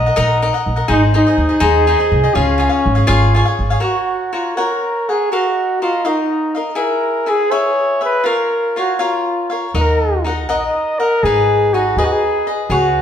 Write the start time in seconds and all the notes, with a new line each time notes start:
Already playing: D#5
0.06 A#4 D#5 F#5
0.16 A#1 D#4 A#4 D#5 F#5
0.42 D#4 A#4 D#5 F#5
0.54 A#4 D#5 F#5
0.66 A#1
0.76 A#4 D#5 F#5
0.88 G#1 D#4 G#4 C5 D#5
1.14 D#4 G#4 C5 D#5
1.27 G#4 C5 D#5
1.38 D#2
1.49 G#4 C5 D#5
1.60 D#2 D#4 G#4 C5 D#5
1.87 D#4 G#4 C5 D#5
1.99 G#4 C5 D#5
2.12 C2
2.24 G#4 C5 D#5
2.35 C#2 C#4 F4 G#4 C#5 F5
2.58 F4 G#4 C#5 F5
2.69 G#4 C#5 F5
2.86 G#1
2.95 G#4 C#5 F5
3.07 G#1 F4 G#4 C#5 F5
3.35 F4 G#4 C#5 F5
3.45 G#4 C#5 F5
3.59 G#1
3.70 G#4 C#5 F5
3.80 F#4 A#4 C#5 F#5
4.33 F4 F#4 A#4 C#5 F#5
4.57 F#4 A#4 C#5 F#5
5.09 G#4 A#4 C#5 F#5
5.32 F#4 A#4 D#5 F5
5.82 F4 F#4 A#4 D#5 F5
6.05 D#4 F#4 A#4 D#5 F5
6.55 A#4 D#5 F5
6.75 E4 G#4 A#4 E5
7.26 E4 G#4 B4 E5
7.51 E4 G#4 B4 C#5 E5
8.01 G#4 B4 E5
8.24 F4 A#4 C#5 F5
8.76 F4 F#4 A#4 C#5 F5
8.99 F4 A#4 C#5 F5
9.50 A#4 C#5 F5
9.74 D#2 D#4 A#4 D#5 F#5
9.80 A#4
10.24 D#4 A#4 D#5 F#5
10.49 A#1 D#4 A#4 D#5 F#5
10.99 A#4 D#5 F#5
11.23 G#1 D#4 G#4 B4 D#5
11.74 D#4 F#4 G#4 B4 D#5
11.96 D#2 D#4 G#4 B4 D#5
12.05 F#4
12.12 G#4
12.47 G#4 B4 D#5
12.70 C#2 F#4 G#4 B4 C#5 F#5